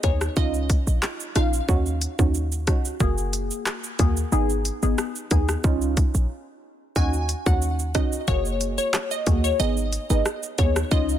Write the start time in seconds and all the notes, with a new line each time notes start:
0.03 D#2 B3 D#4 G#4 C#5, kick, closed hi-hat, shaker
0.21 cross-stick, shaker
0.36 C#2 C#4 D#4 F4 D#5, kick, shaker
0.54 shaker
0.70 kick, closed hi-hat, shaker
0.87 A#1, shaker
1.02 cross-stick, clap, shaker
1.20 shaker
1.35 A#1 C#4 D#4 F4 F5, cross-stick, closed hi-hat, shaker
1.53 shaker
1.68 D#2 C#4 D#4 F#4, kick, shaker
1.86 shaker
2.02 closed hi-hat, shaker
2.19 D#2 C#4 D#4 F#4, kick, shaker
2.34 shaker
2.52 shaker
2.67 C#2 C#4 D#4 F#4, kick, cross-stick, closed hi-hat, shaker
2.85 shaker
3.00 F#1 A#3 F#4 G#4, kick, shaker
3.18 shaker
3.33 closed hi-hat, shaker
3.51 shaker
3.66 cross-stick, clap, shaker
3.84 shaker
3.99 D#2 A#3 F#4 G#4, kick, closed hi-hat, shaker
4.17 shaker
4.32 G#1 B3 D#4 G#4, shaker
4.50 shaker
4.65 closed hi-hat, shaker
4.82 G#1 B3 D#4 G#4, shaker
4.98 cross-stick, shaker
5.16 shaker
5.31 D#2 B3 D#4 G#4, kick, closed hi-hat, shaker
5.49 cross-stick, shaker
5.64 C#2 C#4 D#4 F4, kick, shaker
5.82 shaker
5.97 kick, closed hi-hat, shaker
6.15 A#1, shaker
6.96 D#2 C#4 D#4 F#4 G#5, kick, shaker
7.13 shaker
7.29 closed hi-hat, shaker
7.46 D#2 C#4 D#4 F#4 F#5, kick, shaker
7.62 shaker
7.79 shaker
7.95 C#2 C#4 D#4 F#4 D#5, kick, cross-stick, closed hi-hat, shaker
8.12 shaker
8.27 F#1 A#3 F#4 G#4 C#5, kick, shaker
8.45 shaker
8.61 closed hi-hat, shaker
8.78 C#5, shaker
8.94 cross-stick, clap, shaker
9.11 D#5, shaker
9.26 D#2 A#3 F#4 G#4, kick, closed hi-hat, shaker
9.44 C#5, shaker
9.60 G#1 B3 D#4 G#4 D#5, shaker
9.77 shaker
9.93 closed hi-hat, shaker
10.10 G#1 B3 D#4 G#4 D#5, shaker
10.26 cross-stick, shaker
10.43 shaker
10.58 D#2 B3 D#4 G#4 C#5, kick, closed hi-hat, shaker
10.76 cross-stick, shaker
10.91 C#2 C#4 D#4 F4 D#5, kick, shaker
11.09 shaker